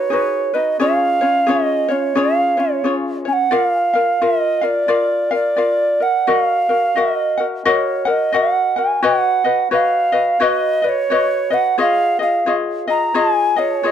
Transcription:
Already playing: ukulele D#4 F#4 B4, ocarina C#5
0.10 ukulele D#4 F#4 G#4 B4
0.54 ukulele D#4 F#4 B4, ocarina D#5
0.80 ukulele C#4 F4 G#4 C#5, ocarina F5
1.21 ukulele C#4 F4 C#5
1.47 ukulele C#4 F4 G#4 C#5, ocarina D#5
1.89 ukulele C#4 F4 C#5, ocarina C#5
2.15 ukulele C#4 F4 G#4 C#5, ocarina F5
2.57 ukulele C#4 F4 C#5, ocarina C#5
2.84 ukulele C#4 F4 G#4 C#5
3.25 ukulele C#4 C#5, ocarina G#5
3.33 ocarina F#5
3.51 ukulele F4 A#4 D5 F5, ocarina F5
3.94 ukulele F4 A#4 F5
4.21 ukulele F4 A#4 F5, ocarina D#5
4.61 ukulele F4 A#4 F5, ocarina D5
4.88 ukulele F4 A#4 D5 F5
5.31 ukulele F4 A#4 F5, ocarina D5
5.56 ukulele F4 A#4 D5 F5
6.00 ukulele A#4, ocarina F#5
6.27 ukulele F#4 A#4 D#5, ocarina F5
6.69 ukulele F#4 A#4
6.96 ukulele F#4 A#4 D#5 F#5, ocarina E5
7.15 ocarina D#5
7.38 ukulele F#4 A#4 F#5
7.65 ukulele F#4 A#4 D#5 F#5, ocarina C#5
8.05 ukulele F#4 A#4 F#5
8.10 ocarina D#5
8.32 ukulele F#4 A#4 D#5 F#5, ocarina F#5
8.76 ukulele F#4 A#4 F#5, ocarina G#5
9.02 ukulele F#4 B4 C#5 D#5, ocarina F#5
9.44 ukulele F#4 B4 D#5
9.71 ukulele F#4 B4 C#5 D#5, ocarina F5
10.12 ukulele F#4 B4 D#5
10.40 ukulele F#4 B4 C#5 D#5, ocarina D#5
10.82 ukulele F#4 B4 D#5, ocarina D5
10.89 ocarina C#5
11.10 ukulele F#4 B4 C#5 D#5
11.50 ukulele F#4 B4 D#5, ocarina F#5
11.78 ukulele F4 G#4 C#5 D#5, ocarina F5
12.19 ukulele F4 G#4 D#5, ocarina F5
12.46 ukulele F4 G#4 C#5 D#5
12.88 ukulele F4 G#4 D#5, ocarina A#5
13.14 ukulele F4 G#4 C#5 D#5, ocarina G#5
13.56 ukulele F4 G#4 D#5, ocarina C#5
13.83 ukulele F4 G#4 C#5 D#5

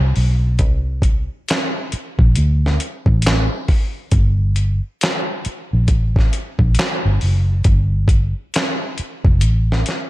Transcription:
0.00 fingered electric bass C2
0.16 fingered electric bass B1, open hi-hat
0.59 fingered electric bass C2, kick, closed hi-hat
1.02 kick, closed hi-hat
1.48 snare, clap, closed hi-hat
1.92 muted fingered electric bass stroke, closed hi-hat
2.19 fingered electric bass A#1, kick
2.35 fingered electric bass D2, closed hi-hat
2.66 snare
2.80 closed hi-hat
3.06 fingered electric bass A1, kick
3.22 closed hi-hat
3.27 snare, clap
3.68 kick, open hi-hat
4.12 fingered electric bass G1, kick, closed hi-hat
4.56 closed hi-hat
5.01 snare, clap, closed hi-hat
5.45 muted fingered electric bass stroke, closed hi-hat
5.73 fingered electric bass A#1
5.88 fingered electric bass A1, kick, closed hi-hat
6.16 kick, snare
6.33 closed hi-hat
6.59 fingered electric bass A#1, kick
6.75 closed hi-hat
6.79 snare, clap
7.05 fingered electric bass G1
7.21 fingered electric bass F#1, open hi-hat
7.64 fingered electric bass G1, kick, closed hi-hat
8.08 kick, closed hi-hat
8.54 snare, clap, closed hi-hat
8.98 muted fingered electric bass stroke, closed hi-hat
9.25 fingered electric bass F1, kick
9.41 fingered electric bass A1, closed hi-hat
9.72 snare
9.86 snare, closed hi-hat

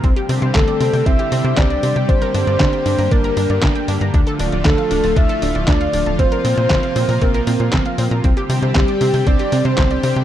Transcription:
0.04 analog synth bass C2, analog synth pad D3 G3 C4 G4, synth arpeggio sound C4, kick, closed hi-hat
0.16 synth arpeggio sound G4, closed hi-hat
0.29 analog synth bass C3, synth arpeggio sound C4, open hi-hat
0.42 analog synth bass C3, synth arpeggio sound C5, closed hi-hat
0.55 analog synth bass C2, synth arpeggio sound C4, soft synth lead A4, kick, snare, clap, closed hi-hat
0.68 synth arpeggio sound D5, closed hi-hat
0.80 analog synth bass C3, synth arpeggio sound C4, open hi-hat
0.93 analog synth bass C3, synth arpeggio sound G5, open hi-hat
1.06 analog synth bass C2, synth arpeggio sound C4, soft synth lead E5, kick, closed hi-hat
1.19 synth arpeggio sound G4, closed hi-hat
1.32 analog synth bass C3, synth arpeggio sound C4, open hi-hat
1.44 analog synth bass C3, synth arpeggio sound C5, closed hi-hat
1.57 analog synth bass C2, synth arpeggio sound C4, soft synth lead D5, kick, snare, clap, closed hi-hat
1.70 synth arpeggio sound D5, closed hi-hat
1.83 analog synth bass C3, synth arpeggio sound C4, open hi-hat
1.96 analog synth bass C3, synth arpeggio sound G5, closed hi-hat
2.09 analog synth bass G1, analog synth pad A#3, synth arpeggio sound D4, soft synth lead C5, kick, closed hi-hat
2.22 synth arpeggio sound A#4, snare, closed hi-hat
2.34 analog synth bass G2, synth arpeggio sound D4, open hi-hat
2.47 analog synth bass G2, synth arpeggio sound D5, closed hi-hat
2.60 analog synth bass G1, synth arpeggio sound D4, kick, snare, clap, closed hi-hat
2.73 synth arpeggio sound G5, closed hi-hat
2.86 analog synth bass G2, synth arpeggio sound D4, open hi-hat
2.98 analog synth bass G2, synth arpeggio sound A#5, open hi-hat
3.11 analog synth bass G1, synth arpeggio sound D4, soft synth lead A#4, kick, closed hi-hat
3.24 synth arpeggio sound A#4, closed hi-hat
3.37 analog synth bass G2, synth arpeggio sound D4, open hi-hat
3.50 analog synth bass G2, synth arpeggio sound D5, closed hi-hat
3.63 analog synth bass G1, synth arpeggio sound D4, kick, snare, clap, closed hi-hat
3.75 synth arpeggio sound G5, closed hi-hat
3.88 analog synth bass G2, synth arpeggio sound D4, open hi-hat
4.01 analog synth bass G2, synth arpeggio sound A#5, closed hi-hat
4.14 analog synth bass D2, analog synth pad F3 A3 F4, synth arpeggio sound D4, kick, closed hi-hat
4.27 synth arpeggio sound A4, closed hi-hat
4.39 analog synth bass D1, synth arpeggio sound D4, open hi-hat
4.52 analog synth bass D1, synth arpeggio sound D5, closed hi-hat
4.65 analog synth bass D2, synth arpeggio sound D4, soft synth lead A4, kick, snare, clap, closed hi-hat
4.78 synth arpeggio sound F5, closed hi-hat
4.91 analog synth bass D1, synth arpeggio sound D4, open hi-hat
5.03 analog synth bass D1, synth arpeggio sound A5, open hi-hat
5.16 analog synth bass D2, synth arpeggio sound D4, soft synth lead E5, kick, closed hi-hat
5.29 synth arpeggio sound A4, closed hi-hat
5.42 analog synth bass D1, synth arpeggio sound D4, open hi-hat
5.55 analog synth bass D1, synth arpeggio sound D5, closed hi-hat
5.68 analog synth bass D2, synth arpeggio sound D4, soft synth lead D5, kick, snare, clap, closed hi-hat
5.81 synth arpeggio sound F5, closed hi-hat
5.93 analog synth bass D1, synth arpeggio sound D4, open hi-hat
6.06 analog synth bass D1, synth arpeggio sound A5, closed hi-hat
6.19 analog synth bass A#1, analog synth pad C3 A#3, synth arpeggio sound C4, soft synth lead C5, kick, closed hi-hat
6.32 synth arpeggio sound A#4, closed hi-hat
6.45 analog synth bass A#2, synth arpeggio sound C4, open hi-hat
6.57 analog synth bass A#2, synth arpeggio sound C5, closed hi-hat
6.70 analog synth bass A#1, synth arpeggio sound C4, kick, snare, clap, closed hi-hat
6.83 synth arpeggio sound F5, closed hi-hat
6.96 analog synth bass A#2, synth arpeggio sound C4, open hi-hat
7.09 analog synth bass A#2, synth arpeggio sound A#5, open hi-hat
7.21 analog synth bass A#1, synth arpeggio sound C4, soft synth lead A#4, kick, closed hi-hat
7.34 synth arpeggio sound A#4, closed hi-hat
7.47 analog synth bass A#2, synth arpeggio sound C4, open hi-hat
7.60 analog synth bass A#2, synth arpeggio sound C5, closed hi-hat
7.73 analog synth bass A#1, synth arpeggio sound C4, kick, snare, clap, closed hi-hat
7.86 synth arpeggio sound F5, closed hi-hat
7.98 analog synth bass A#2, synth arpeggio sound C4, open hi-hat
8.11 analog synth bass A#2, synth arpeggio sound A#5, closed hi-hat
8.24 analog synth bass C2, analog synth pad D3 G3 C4 G4, synth arpeggio sound C4, kick, closed hi-hat
8.37 synth arpeggio sound G4, closed hi-hat
8.49 analog synth bass C3, synth arpeggio sound C4, open hi-hat
8.62 analog synth bass C3, synth arpeggio sound C5, closed hi-hat
8.75 analog synth bass C2, synth arpeggio sound C4, soft synth lead G4, kick, snare, clap, closed hi-hat
8.88 synth arpeggio sound D5, closed hi-hat
9.01 analog synth bass C3, synth arpeggio sound C4, open hi-hat
9.14 analog synth bass C3, synth arpeggio sound G5, open hi-hat
9.27 analog synth bass C2, synth arpeggio sound C4, soft synth lead D5, kick, closed hi-hat
9.39 synth arpeggio sound G4, closed hi-hat
9.52 analog synth bass C3, synth arpeggio sound C4, open hi-hat
9.65 analog synth bass C3, synth arpeggio sound C5, soft synth lead C5, closed hi-hat
9.78 analog synth bass C2, synth arpeggio sound C4, kick, snare, clap, closed hi-hat
9.91 synth arpeggio sound D5, closed hi-hat
10.03 analog synth bass C3, synth arpeggio sound C4, soft synth lead C5, open hi-hat
10.16 analog synth bass C3, synth arpeggio sound G5, closed hi-hat

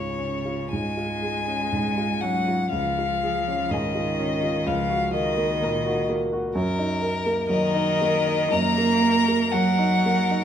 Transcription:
Already playing: grand piano C#2 G#2 C#4 F4 G#4, cello C#3, violin G#4 C#5
0.18 grand piano C#4
0.46 grand piano F4
0.72 grand piano G#2, cello G#3, violin G#5
0.97 grand piano F4
1.22 grand piano G#4
1.47 grand piano C#4
1.73 grand piano G#2, violin G#4
1.98 grand piano F4
2.21 cello F#3, grand piano C#4, violin F#5
2.48 grand piano F4
2.72 grand piano C#2, cello F3, violin F5
2.99 grand piano F4
3.23 grand piano G#4
3.48 grand piano C#4
3.71 grand piano G#2, cello D#3, violin G#4 D#5
3.95 grand piano F4
4.19 grand piano C#4
4.43 grand piano F4
4.66 grand piano C#2, cello F3, violin F5
4.90 grand piano F#4
5.14 cello D#3, grand piano A#4, violin D#5
5.37 grand piano A#3
5.62 grand piano A#2, violin A#4
5.86 grand piano F#4
6.09 grand piano A#3
6.33 grand piano F#4
6.55 grand piano F#2, violin A#4
6.79 grand piano D#4
7.02 grand piano A#4
7.26 grand piano A#3
7.48 cello D#3, grand piano F#3, violin A#4 D#5
7.74 grand piano D#4
8.01 grand piano A#3
8.27 grand piano D#4
8.51 grand piano F#2, cello A#3, violin A#4 A#5
8.78 grand piano A#3
9.03 grand piano A#4
9.28 grand piano A#3
9.52 cello F#3, grand piano F#3, violin A#4 F#5
9.79 grand piano D#4
10.06 grand piano A#3
10.31 grand piano D#4

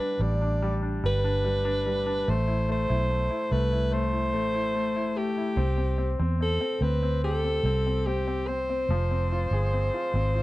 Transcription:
Already playing: grand piano G3, alto saxophone B4
0.00 grand piano D4
0.19 fingered electric bass A1, grand piano G3, alto saxophone D5
0.41 grand piano D4
0.62 grand piano G3
0.82 grand piano D4
1.03 fingered electric bass G1, grand piano G3, alto saxophone B4
1.24 grand piano D4
1.44 grand piano G3
1.65 grand piano D4
1.86 grand piano G3
2.06 grand piano D4
2.28 fingered electric bass A1, grand piano A3, alto saxophone C5
2.47 grand piano E4
2.69 grand piano A3, alto saxophone C5
2.89 fingered electric bass B1, grand piano E4
3.10 grand piano A3
3.30 grand piano E4
3.52 fingered electric bass C2, grand piano A3, alto saxophone B4
3.72 grand piano E4
3.92 grand piano A3, alto saxophone C5
4.12 grand piano E4
4.34 fingered electric bass A1, grand piano A3
4.55 grand piano E4
4.75 grand piano A3
4.96 grand piano E4
5.17 grand piano A3, alto saxophone G4
5.37 grand piano E4
5.57 fingered electric bass C2, grand piano C4
5.78 grand piano C4
5.98 grand piano C4
6.19 fingered electric bass E2, grand piano C4
6.41 grand piano C4, alto saxophone A4
6.61 grand piano C4
6.81 fingered electric bass D2, grand piano C4, alto saxophone B4
7.03 grand piano C4
7.24 grand piano G4, alto saxophone A4
7.45 grand piano C4
7.63 fingered electric bass C2, grand piano C4
7.87 grand piano C4
8.06 grand piano C4, alto saxophone G4
8.28 grand piano C4
8.47 grand piano C4, alto saxophone C5
8.70 grand piano C4
8.89 fingered electric bass F1, grand piano F3
9.11 grand piano C4
9.32 grand piano F4
9.51 fingered electric bass G1, grand piano G#4
9.73 grand piano C4
9.94 grand piano F4
10.14 fingered electric bass G#1, grand piano C4
10.35 grand piano F4

